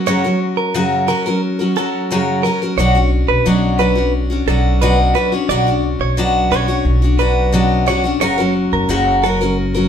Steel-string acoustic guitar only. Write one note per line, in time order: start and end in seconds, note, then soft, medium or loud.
0.06 0.24 F#2 medium
0.06 0.24 C#3 medium
0.06 0.24 F#3 medium
0.06 0.24 C#4 medium
0.06 0.24 F#4 medium
0.06 0.23 A#4 medium
0.24 0.74 F#3 soft
0.24 0.74 C#4 soft
0.24 0.74 F#4 soft
0.24 0.75 A#4 medium
0.74 1.08 F#2 medium
0.74 1.08 C#3 medium
0.74 1.07 F#3 medium
0.74 1.07 C#4 medium
0.74 1.08 F#4 medium
0.74 1.09 A#4 medium
1.08 1.25 F#3 medium
1.08 1.26 C#4 medium
1.08 1.26 F#4 medium
1.08 1.25 A#4 medium
1.26 1.60 F#3 soft
1.26 1.60 C#4 soft
1.26 1.59 F#4 soft
1.26 1.58 A#4 medium
1.59 1.75 F#3 soft
1.59 1.76 C#4 soft
1.59 1.77 F#4 soft
1.59 1.76 A#4 soft
1.76 2.10 F#3 medium
1.76 2.11 C#4 medium
1.76 2.11 F#4 medium
1.76 2.11 A#4 medium
2.11 2.44 F#2 medium
2.11 2.45 C#3 medium
2.11 2.43 F#3 medium
2.11 2.44 C#4 medium
2.11 2.45 F#4 medium
2.11 2.45 A#4 medium
2.44 2.61 F#3 medium
2.44 2.62 C#4 medium
2.44 2.62 F#4 medium
2.44 2.61 A#4 medium
2.62 2.78 F#3 soft
2.62 2.78 C#4 soft
2.62 2.79 F#4 soft
2.62 2.79 A#4 soft
2.78 2.95 B2 medium
2.78 2.96 F#3 medium
2.78 2.95 C#4 medium
2.78 2.96 D4 medium
2.78 2.94 F#4 medium
2.95 3.46 C#4 soft
2.95 3.45 D4 soft
2.95 3.46 F#4 medium
3.46 3.80 B2 medium
3.46 3.77 F#3 medium
3.46 3.79 C#4 medium
3.46 3.79 D4 medium
3.46 3.80 F#4 medium
3.79 3.96 F#3 medium
3.79 3.96 C#4 medium
3.79 3.97 D4 medium
3.79 3.94 F#4 medium
3.95 4.30 C#4 soft
3.95 4.31 D4 soft
3.95 4.29 F#4 medium
4.30 4.48 C#4 soft
4.30 4.47 D4 soft
4.30 4.47 F#4 soft
4.48 4.81 F#3 medium
4.48 4.82 C#4 medium
4.48 4.82 D4 medium
4.48 4.82 F#4 medium
4.82 5.16 B2 medium
4.82 5.14 F#3 medium
4.82 5.16 C#4 medium
4.82 5.15 D4 medium
4.82 5.16 F#4 medium
5.15 5.32 F#3 medium
5.15 5.32 C#4 medium
5.15 5.33 D4 medium
5.15 5.31 F#4 medium
5.32 5.50 C#4 soft
5.32 5.50 D4 soft
5.32 5.49 F#4 soft
5.50 5.67 B2 medium
5.50 5.67 F#3 medium
5.50 5.67 C#4 medium
5.50 5.67 D4 medium
5.50 5.65 F#4 medium
5.67 6.17 C#4 medium
5.67 6.17 D4 soft
5.67 6.18 F#4 medium
6.17 6.51 B2 medium
6.17 6.50 F#3 medium
6.17 6.52 C#4 medium
6.17 6.51 D4 medium
6.17 6.52 F#4 medium
6.51 6.69 F#3 medium
6.51 6.68 C#4 medium
6.51 6.69 D4 medium
6.51 6.67 F#4 medium
6.68 7.02 C#4 soft
6.68 7.03 D4 soft
6.68 7.01 F#4 medium
7.02 7.19 C#4 soft
7.02 7.18 D4 soft
7.02 7.19 F#4 soft
7.19 7.52 F#3 medium
7.19 7.53 C#4 medium
7.19 7.52 D4 medium
7.19 7.53 F#4 medium
7.52 7.87 B2 medium
7.52 7.85 F#3 medium
7.52 7.87 C#4 medium
7.52 7.86 D4 medium
7.52 7.88 F#4 medium
7.86 8.04 F#3 medium
7.86 8.04 C#4 medium
7.86 8.05 D4 medium
7.86 8.03 F#4 medium
8.04 8.20 C#4 soft
8.04 8.21 D4 soft
8.04 8.21 F#4 soft
8.21 8.38 F#2 medium
8.21 8.38 C#3 medium
8.21 8.38 F#3 medium
8.21 8.39 C#4 medium
8.21 8.38 F#4 medium
8.21 8.37 A#4 medium
8.38 8.88 F#3 soft
8.38 8.89 C#4 soft
8.38 8.89 F#4 medium
8.38 8.89 A#4 medium
8.89 9.23 F#2 medium
8.89 9.23 C#3 medium
8.89 9.22 F#3 medium
8.89 9.23 C#4 medium
8.89 9.24 F#4 medium
8.89 9.24 A#4 medium
9.23 9.41 F#3 medium
9.23 9.41 C#4 medium
9.23 9.40 F#4 medium
9.23 9.40 A#4 medium
9.41 9.76 F#3 soft
9.41 9.75 C#4 soft
9.41 9.74 F#4 medium
9.41 9.73 A#4 soft
9.74 9.88 F#3 soft
9.74 9.88 C#4 soft
9.74 9.88 F#4 soft
9.74 9.88 A#4 medium